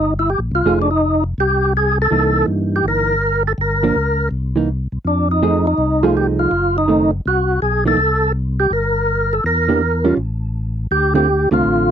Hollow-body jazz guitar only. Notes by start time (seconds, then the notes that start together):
0.66 F3 A3 D#4 G#4
2.11 E3 A#3 D#4
3.83 F3 A#3 D4
4.56 E3 A#3 D#4
5.43 F3 A3 D#4 G#4
6.03 F3 A3 D#4 G#4
6.88 D#3 A3 C4
7.85 E3 A#3 D#4
9.69 E3 A#3 D4 G4
10.04 G3 C#4 F4
11.14 D3 A3 C4 F4
11.51 D3 A3 C4 F4